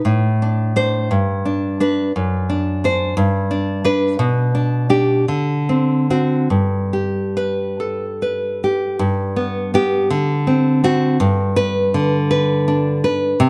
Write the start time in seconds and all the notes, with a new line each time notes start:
0.05 A2
0.42 D4
0.76 D4 C5
1.11 G2
1.45 D4
1.80 D4 B4
2.16 F#2
2.50 D4
2.84 D4 C5
3.17 G2
3.51 D4
3.84 D4 B4
4.19 B2
4.55 D4
4.90 D4 G4
5.28 D3
5.69 C4
6.10 C4 F#4
6.50 G2
6.93 G4
7.37 B4
7.80 A4
8.22 B4
8.64 G4
8.99 G2
9.36 B3
9.74 B3 G4
10.10 D3
10.47 C4
10.84 C4 F#4
11.20 G2
11.56 B4
11.94 D3
12.31 B4
12.68 D4
13.04 B4
13.40 C3